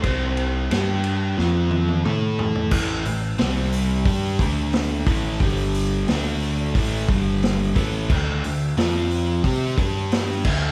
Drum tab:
CC |----------------|x---------------|----------------|x-------------x-|
RD |x-x-x-x---------|----------------|----------------|----------------|
HH |----------------|--o-o-o-o-o-o-o-|o-o-o-o-o-o-o-o-|--o-o-o-o-o-o---|
SD |----o---o-------|----o-------o---|----o-------o---|----o-------oo--|
T1 |----------oo----|----------------|----------------|----------------|
T2 |------------o---|----------------|----------------|----------------|
FT |--------------oo|----------------|----------------|----------------|
BD |o---------------|o-------o-o---o-|o-------o-o---o-|o-------o-o---o-|